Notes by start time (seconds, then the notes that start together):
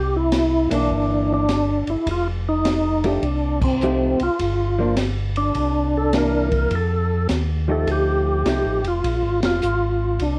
Already playing: C2 G4
0.16 E4
0.32 snare, hi-hat pedal, ride
0.70 B1 E3 A#3 D4, ride
0.90 G1, kick
1.34 D4
1.49 snare, hi-hat pedal, ride
1.87 G1 E4, ride
2.06 F1, kick, ride
2.11 F4
2.48 D#4
2.65 snare, hi-hat pedal, ride
3.04 F3 A3 D4 D#4 G4, ride
3.23 C2, kick, ride
3.62 C4, kick, crash
3.81 F3 A3 D#4 G4, hi-hat pedal
4.19 C2 F4, ride
4.39 G1, kick, ride
4.78 F3 A#3 D4
4.97 snare, hi-hat pedal, ride
5.36 D4, ride
5.54 C2, kick, ride
5.97 A4
6.13 E3 A#3 D4, snare, hi-hat pedal, ride
6.18 A#4
6.52 kick, ride
6.71 F2, kick, ride
6.75 A4
7.29 D#2, kick, snare, hi-hat pedal, ride
7.68 F3 A3 D#4 G4 A4
7.87 D2, kick, ride
7.91 G4
8.45 C2 F3 A3 D#4 G4, kick, snare, hi-hat pedal, ride
8.49 G4
8.65 A1
8.84 F1 F4, ride
9.04 A#1, kick, ride
9.22 G#1
9.42 F1 F4, snare, ride
9.62 G#1, hi-hat pedal
10.20 C2 D4, kick, ride